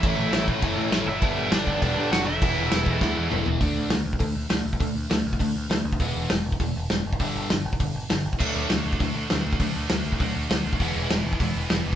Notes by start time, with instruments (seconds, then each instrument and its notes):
Already playing: distorted electric guitar A2 E3 A3 C#4 E4, overdriven electric guitar E4 E5
0.03 picked electric bass A1, overdriven electric guitar A2 E3 A3 C#4 E4, kick, crash
0.19 picked electric bass A1
0.32 picked electric bass A1, overdriven electric guitar A2 E3 A3 C#4 E4, snare, crash
0.48 picked electric bass A1, kick
0.62 picked electric bass F#1, overdriven electric guitar A2 E3 A3 C#4 E4, kick, crash
0.77 picked electric bass A2
0.91 picked electric bass A1, overdriven electric guitar A2 E3 A3 C#4 E4, snare, crash
1.07 picked electric bass G1, distorted electric guitar G2 D3 G3 B3 D4, overdriven electric guitar E4 E5
1.22 picked electric bass G1, overdriven electric guitar G2 D3 G3 B3 D4, kick, crash
1.36 picked electric bass G1
1.52 picked electric bass G1, overdriven electric guitar G2 D3 G3 B3 D4 D5, snare, crash
1.67 picked electric bass G1, kick
1.82 picked electric bass E1, overdriven electric guitar G2 D3 G3 B3 D4 D5, kick, crash
1.97 picked electric bass G2
2.11 picked electric bass F#1, overdriven electric guitar G2 D3 G3 B3 D4 F#4 F#5, snare, crash
2.25 picked electric bass E1, distorted electric guitar E3 G#3 B3 E4, overdriven electric guitar E4 E5
2.42 picked electric bass E1, overdriven electric guitar E3 G#3 B3 E4, kick, crash
2.56 picked electric bass E1
2.71 picked electric bass E1, overdriven electric guitar E3 G#3 B3 E4, snare, crash
2.86 picked electric bass E1, kick
2.96 overdriven electric guitar E3 D5
3.01 picked electric bass D2, overdriven electric guitar G#3 B3 E4, kick, snare
3.17 picked electric bass E2
3.30 picked electric bass E1, overdriven electric guitar E3 G#3 B3 E4, mid tom
3.46 picked electric bass E1, floor tom
3.60 picked electric bass D2, overdriven electric guitar D3 A3 D4, kick, open hi-hat
3.76 picked electric bass D2
3.90 picked electric bass D2, overdriven electric guitar D3 A3, snare, open hi-hat
4.05 picked electric bass D2
4.13 kick
4.19 picked electric bass D2, overdriven electric guitar D3 A3, kick, open hi-hat
4.35 picked electric bass D2
4.50 picked electric bass D2, overdriven electric guitar D3 A3, snare, open hi-hat
4.65 picked electric bass D2
4.73 kick
4.80 picked electric bass D2, overdriven electric guitar D3 A3, kick, open hi-hat
4.95 picked electric bass D2
5.10 picked electric bass D2, overdriven electric guitar D3 A3, snare, open hi-hat
5.27 picked electric bass D2
5.33 kick
5.39 picked electric bass D2, overdriven electric guitar D3 A3, kick, open hi-hat
5.56 picked electric bass D2
5.70 picked electric bass D2, overdriven electric guitar D3 A3, snare, open hi-hat
5.85 picked electric bass D2
5.92 kick
6.00 picked electric bass E1, overdriven electric guitar E3 G#3 B3, kick, open hi-hat
6.15 picked electric bass E1
6.30 picked electric bass E1, overdriven electric guitar E3 G#3, snare, open hi-hat
6.45 picked electric bass E1
6.52 kick
6.60 picked electric bass E1, overdriven electric guitar E3 G#3, kick, open hi-hat
6.76 picked electric bass E1
6.90 picked electric bass E1, overdriven electric guitar E3 G#3, snare, open hi-hat
7.06 picked electric bass F#1
7.13 kick
7.20 picked electric bass G1, overdriven electric guitar G2 D3 G3, kick, open hi-hat
7.36 picked electric bass G1
7.50 picked electric bass G1, overdriven electric guitar G2 D3, snare, open hi-hat
7.65 picked electric bass G1
7.73 kick
7.80 picked electric bass G1, overdriven electric guitar G2 D3, kick, open hi-hat
7.95 picked electric bass G1
8.10 picked electric bass G1, overdriven electric guitar G2 D3, snare, open hi-hat
8.25 picked electric bass G1
8.33 kick
8.39 picked electric bass D2, distorted electric guitar D3 A3 D4 F#4, overdriven electric guitar D3 F#3 A3, kick, crash
8.55 picked electric bass D2
8.70 picked electric bass D2, overdriven electric guitar D3 F#3, snare, open hi-hat
8.86 picked electric bass D2
8.93 kick
8.99 picked electric bass D2, distorted electric guitar D3 A3 D4 F#4, overdriven electric guitar D3 F#3, kick, open hi-hat
9.15 picked electric bass D2
9.30 picked electric bass D2, overdriven electric guitar D3 F#3, snare, open hi-hat
9.46 picked electric bass D2
9.53 kick
9.59 picked electric bass D2, distorted electric guitar D3 A3 D4 F#4, overdriven electric guitar D3 F#3, kick, open hi-hat
9.76 picked electric bass D2
9.90 picked electric bass D2, overdriven electric guitar D3 F#3, snare, open hi-hat
10.06 picked electric bass D2
10.12 kick
10.19 picked electric bass D2, distorted electric guitar D3 A3 D4 F#4, overdriven electric guitar D3 F#3, kick, open hi-hat
10.37 picked electric bass D2
10.50 picked electric bass D2, overdriven electric guitar D3 F#3, snare, open hi-hat
10.66 picked electric bass D2
10.73 kick
10.79 picked electric bass E1, distorted electric guitar E3 G#3 B3 E4, overdriven electric guitar E3 G#3 B3, kick, open hi-hat
10.95 picked electric bass E1
11.10 picked electric bass E1, overdriven electric guitar E3 G#3, snare, open hi-hat
11.25 picked electric bass E1
11.33 kick
11.39 picked electric bass E1, distorted electric guitar E3 G#3 B3 E4, overdriven electric guitar E3 G#3, kick, open hi-hat
11.56 picked electric bass E1
11.70 picked electric bass E1, overdriven electric guitar E3 G#3, snare, open hi-hat
11.86 picked electric bass E1